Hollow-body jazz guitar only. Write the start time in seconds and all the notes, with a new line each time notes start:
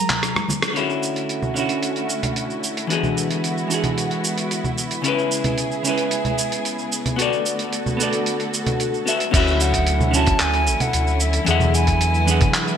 Already playing: F#3 E4 G#4 A#4
0.73 D3 C#4 E4
0.79 F#4
1.54 D3 C#4 E4
1.60 F#4
2.87 E3 D4
2.91 F#4 G#4
3.68 E3 D4 F#4
3.74 G#4
5.02 C#3 C#4 E4
5.08 B4
5.83 C#3 C#4 E4
5.89 B4
7.16 B3 F#4 A4
7.22 D5
7.97 B3 F#4
8.01 A4 D5
9.06 B3 F#4 A4 E5
9.31 D3 C#4 E4
9.37 F#4
10.11 D3 C#4
10.15 E4 F#4
11.45 E3 D4 G#4
11.51 F#5
12.26 E3 D4 G#4
12.31 F#5